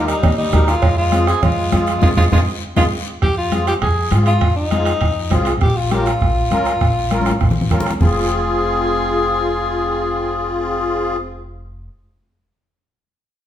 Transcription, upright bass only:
0.00 0.11 D#2 medium
0.23 0.47 D#2 medium
0.53 0.77 D#2 medium
0.83 1.31 F2 medium
1.42 1.66 F2 medium
1.73 1.96 F2 medium
2.03 2.14 F2 medium
2.17 2.28 F2 medium
2.32 2.43 F2 medium
2.77 2.88 F2 medium
3.22 3.70 F2 medium
3.82 4.06 F2 medium
4.11 4.35 G#2 medium
4.42 4.90 F2 medium
5.01 5.25 F2 medium
5.31 5.55 C2 loud
5.62 6.09 A#1 medium
6.21 6.45 A#1 medium
6.51 6.75 C#2 medium
6.81 7.29 A#1 medium
7.41 7.65 A#1 medium
7.71 7.95 C#2 medium
8.01 11.86 F1 medium

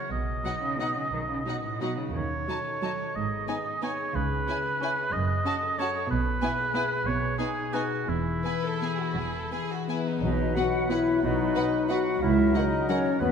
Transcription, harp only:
0.00 0.13 C#3 soft
0.00 0.27 F#3 soft
0.00 0.13 C#4 soft
0.00 0.13 E4 soft
0.00 0.62 F#4 soft
0.00 0.13 C#5 soft
0.12 1.12 B2 soft
0.28 1.28 F#3 soft
0.45 0.79 D#4 soft
0.63 0.95 F#4 soft
0.80 1.46 D#4 soft
1.13 2.16 B2 soft
1.29 3.16 F#3 soft
1.47 1.81 D#4 soft
1.64 1.98 F#4 soft
1.82 2.30 D#4 soft
1.99 2.65 F#4 soft
2.15 3.16 D#3 soft
2.31 3.46 D#4 soft
2.48 3.16 A4 soft
2.66 2.98 F#4 soft
2.82 4.16 D#5 soft
2.99 3.16 F#4 soft
3.15 4.16 G#2 soft
3.31 5.15 B3 soft
3.48 4.16 D#4 soft
3.65 3.98 G#4 soft
3.82 5.15 B4 soft
3.99 4.64 G#4 soft
4.16 5.15 C#3 soft
4.32 5.27 C#4 soft
4.48 5.15 E4 soft
4.65 4.97 G#4 soft
4.81 5.77 C#5 soft
4.98 5.15 G#4 soft
5.13 6.11 F#2 soft
5.29 6.12 C#4 soft
5.45 6.11 F#4 soft
5.62 5.94 A4 soft
5.79 6.11 C#5 soft
5.95 6.12 A4 soft
6.10 7.05 B2 soft
6.25 7.21 B3 soft
6.42 7.08 E4 soft
6.59 6.90 G#4 soft
6.75 7.73 B4 soft
6.91 7.55 G#4 soft
7.07 8.10 B2 soft
7.22 10.24 B3 soft
7.39 8.09 D#4 soft
7.56 7.90 G#4 soft
7.74 8.62 B4 soft
7.91 8.43 G#4 soft
8.08 9.15 E3 soft
8.26 9.33 E4 soft
8.44 9.51 G#4 soft
8.81 9.88 E5 soft
9.00 9.70 B4 soft
9.17 10.24 E3 soft
9.52 10.24 G#4 soft
9.71 10.06 B4 soft
9.89 10.25 E5 soft
10.07 10.56 B4 soft
10.23 11.21 B2 soft
10.40 11.06 B3 soft
10.57 10.90 B4 soft
10.74 11.73 F#5 soft
10.91 11.55 B4 soft
11.08 12.06 B3 soft
11.23 12.24 B2 soft
11.39 12.38 F#3 soft
11.74 12.72 F#5 soft
12.07 12.24 B3 soft
12.23 13.22 C#3 soft
12.39 13.04 F#3 soft
12.56 12.88 A#4 soft
12.73 13.32 F#5 soft
12.89 13.22 A#4 soft
13.05 13.32 F#3 soft
13.20 13.32 D#3 soft

